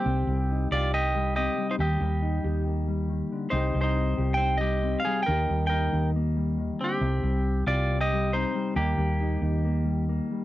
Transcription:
<<
  \new Staff \with { instrumentName = "Clean electric guitar" } { \time 4/4 \key c \minor \tempo 4 = 138 <c' g'>4. <f' d''>8 <g' ees''>4 <g' ees''>8. <ees' c''>16 | <g' ees''>2 r2 | <ees' c''>8. <ees' c''>4~ <ees' c''>16 <c'' g''>8 <g' ees''>4 <aes' f''>8 | <bes' g''>4 <bes' g''>4 r4. <c' g'>8~ |
<c' g'>4. <f' d''>8. <g' ees''>8. <ees' c''>4 | <bes g'>2. r4 | }
  \new Staff \with { instrumentName = "Clean electric guitar" } { \clef bass \time 4/4 \key c \minor << { g'4 ees'8 g'4. c'4 | r4 ees'8 g'8 bes2 | <g c' ees' g'>4 ees'8 g'8 c'4 c'4 | <bes ees' g'>4 ees'4 bes2 |
r4. g'8 c'4 c'4 | r4 ees'8 ees'8 bes4 bes4 | } \\ { c8 g2 g4 g8 | ees8 g2 g8 ees8 d8 | c8 g2 g4 g8 | ees8 g2 g8 ees8 d8 |
c8 g2 g4 g8 | ees8 g2 g4 g8 | } >> }
  \new Staff \with { instrumentName = "Fingered electric bass" } { \clef bass \time 4/4 \key c \minor c,8 c,4 c,2 r8 | ees,8 ees,4 ees,2 r8 | c,8 c,4 c,2 r8 | ees,8 ees,4 ees,2 r8 |
c,8 c,4 c,2 r8 | ees,8 ees,4 ees,2 r8 | }
>>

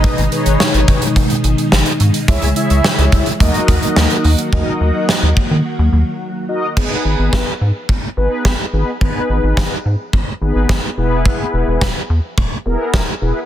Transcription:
<<
  \new Staff \with { instrumentName = "Analog polysynth" } { \time 4/4 \key gis \minor \tempo 4 = 107 <dis' gis' b' dis''>8 <dis' gis' b' cis''>4. r2 | <e' gis' cis'' e''>8 <e' gis' cis'' e''>4. <dis' fis' ais' dis''>4. r8 | <dis' fis' ais' dis''>4. r2 <dis' fis' ais' dis''>8 | <b dis' gis' b'>4. r4 <b dis' gis' b'>8 r8 <b dis' gis' b'>8 |
<b dis' gis' b'>4. r4 <b dis' gis' b'>8 r8 <b e' gis' b'>8~ | <b e' gis' b'>4 r4. <b e' gis' ais'>8 r8 <b e' gis' b'>8 | }
  \new Staff \with { instrumentName = "String machine" } { \clef bass \time 4/4 \key gis \minor <b, dis gis dis'>1 | <cis e gis e'>2 <dis fis ais fis'>2 | <dis fis ais fis'>1 | r1 |
r1 | r1 | }
  \new Staff \with { instrumentName = "Analog synth bass" } { \clef bass \time 4/4 \key gis \minor r16 gis,,16 r16 gis,,16 r16 gis,,16 gis,,16 r16 gis,,16 r16 gis,,16 r16 gis,,16 r16 gis,16 r16 | cis,16 cis,16 r16 cis,16 r16 cis,16 cis,16 r16 dis,16 r16 dis,16 r16 dis,16 r16 dis,16 r16 | dis,16 r16 dis,16 r8 dis,16 r16 dis16 r16 dis,16 dis,16 r4 r16 | gis,,16 r16 gis,,16 gis,,16 gis,,16 r16 gis,16 r16 gis,,16 r16 gis,,16 r16 gis,,16 r16 gis,,16 r16 |
gis,,16 r16 gis,,16 gis,,16 gis,,16 r16 gis,16 r16 gis,,16 r16 gis,,16 gis,,16 gis,,16 r16 e,,8~ | e,,16 r16 e,,16 e,,16 e,,16 r16 e,16 r16 e,,16 r16 e,,16 r16 e,,16 r16 e,,16 r16 | }
  \new DrumStaff \with { instrumentName = "Drums" } \drummode { \time 4/4 <hh bd>16 hh16 hh16 hh16 sn16 hh16 <hh bd>16 hh16 <hh bd>16 hh16 hh16 hh16 sn16 hh16 hh16 hh16 | <hh bd>16 hh16 hh16 hh16 sn16 hh16 <hh bd>16 hh16 <hh bd>16 hh16 <hh bd>16 hh16 sn16 hh16 hho16 hh16 | bd4 sn8 bd8 r4 r4 | <cymc bd>4 <bd sn>4 bd4 <bd sn>4 |
bd4 <bd sn>4 bd4 <bd sn>4 | bd4 <bd sn>4 bd4 <bd sn>4 | }
>>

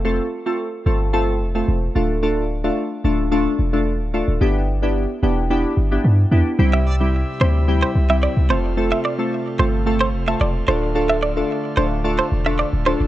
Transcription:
<<
  \new Staff \with { instrumentName = "Clean electric guitar" } { \time 4/4 \key c \major \tempo 4 = 110 r1 | r1 | r1 | r16 e''16 d''16 r8. c''16 r8 c''16 r16 e''16 d''16 r16 c''16 r16 |
r16 e''16 d''16 r8. c''16 r8 c''16 r16 e''16 d''16 r16 c''16 r16 | r16 e''16 d''16 r8. c''16 r8 c''16 r16 e''16 d''16 r16 c''16 r16 | }
  \new Staff \with { instrumentName = "Synth keys" } { \time 4/4 \key c \major <a c' f' a'>8 r16 <a c' f' a'>16 r8 <a c' f' a'>8 <a c' f' a'>8 r16 <a c' f' a'>16 r8 <a d' f' a'>8 | <a d' f' a'>8 r16 <a d' f' a'>16 r8 <a d' f' a'>8 <a d' f' a'>8 r16 <a d' f' a'>16 r8 <a d' f' a'>8 | <b d' e' g'>8 r16 <b d' e' g'>16 r8 <b d' e' g'>8 <b d' e' g'>8 r16 <b d' e' g'>16 r8 <b d' e' g'>8 | <g c' e' g'>8 r16 <g c' e' g'>16 r8 <g c' e' g'>8 <g c' e' g'>8 r16 <g c' e' g'>16 r8 <a c' f' a'>8 |
<a c' f' a'>8 r16 <a c' f' a'>16 r8 <a c' f' a'>8 <a c' f' a'>8 r16 <a c' f' a'>16 r8 <a d' f' a'>8 | <a d' f' a'>8 r16 <a d' f' a'>16 r8 <a d' f' a'>8 <a d' f' a'>8 r16 <a d' f' a'>16 r8 <a d' f' a'>8 | }
  \new Staff \with { instrumentName = "Pipe organ" } { \time 4/4 \key c \major r1 | r1 | r1 | e'2.~ e'8 f'8~ |
f'2.~ f'8 f'8~ | f'1 | }
  \new Staff \with { instrumentName = "Pipe organ" } { \clef bass \time 4/4 \key c \major << { r1 | r1 | r1 | g2.~ g8 a8~ |
a1~ | a1 | } \\ { r1 | r1 | r1 | c1~ |
c2.~ c8 d8~ | d1 | } >> }
  \new Staff \with { instrumentName = "808-style bass" } { \clef bass \time 4/4 \key c \major f,,8 r4 g,,4 f,,8 e,,8 d,,8~ | d,,4~ d,,16 r16 d,,4 e,,8. d,,8 d,,16 | g,,4~ g,,16 r16 e,,4 g,,8 g,8 e,16 r16 | c,4~ c,16 r16 d,4 c,8. c,16 f,,8~ |
f,,8 r4 g,,4 f,,8 e,,8 d,,8~ | d,,4~ d,,16 r16 d,,4 e,,8. d,,8 d,,16 | }
>>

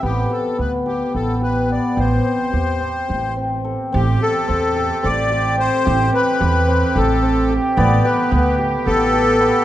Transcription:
<<
  \new Staff \with { instrumentName = "Accordion" } { \time 7/8 \key a \minor \tempo 4 = 108 g'8 a'8 b'8 g'8 a'8 b'8 d''8 | c''2~ c''8 r4 | g'8 a'4. d''4 c''8~ | c''8 b'4. a'4 r8 |
d''8 b'4 r8 a'4. | }
  \new Staff \with { instrumentName = "Woodwind section" } { \time 7/8 \key a \minor << { r2. r8 | r2. r8 | <c' g'>2.~ <c' g'>8~ | <c' g'>2.~ <c' g'>8 |
b'2.~ b'8 | } \\ { r2. r8 | r2. r8 | a2.~ a8~ | a2.~ a8~ |
a2.~ a8 | } >> }
  \new Staff \with { instrumentName = "Hammered dulcimer" } { \time 7/8 \key a \minor b8 g'8 b8 g'8 b8 g'8 b8 | g'8 c'8 g'8 c'8 g'8 c'8 a'8 | c'8 g'8 c'8 a'8 c'8 g'8 c'8 | g'8 c'8 g'8 c'8 g'8 c'8 g'8 |
b8 g'8 b8 g'8 b8 g'8 b8 | }
  \new Staff \with { instrumentName = "Upright bass" } { \clef bass \time 7/8 \key a \minor a,,8 r8 d,4 a,,4. | a,,8 r8 e,4 a,,4. | a,,8 r8 e,4 a,,4. | a,,8 r8 e,4 a,,4. |
a,,8 r8 d,4 a,,4. | }
>>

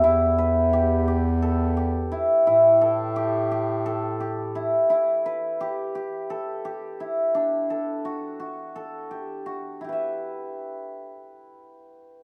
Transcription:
<<
  \new Staff \with { instrumentName = "Hammered dulcimer" } { \time 7/8 \key e \minor \tempo 4 = 86 e'8 b'8 g'8 g'8 a'8 g'8 e'8 | e'8 a'8 g'8 g'8 a'8 g'8 e'8 | e'8 b'8 g'8 g'8 a'8 g'8 e'8 | d'8 a'8 fis'8 fis'8 a'8 g'8 fis'8 |
<e' g' b' e''>2.~ <e' g' b' e''>8 | }
  \new Staff \with { instrumentName = "Bass clarinet" } { \clef bass \time 7/8 \key e \minor e,2.~ e,8 | a,2.~ a,8 | r2. r8 | r2. r8 |
r2. r8 | }
>>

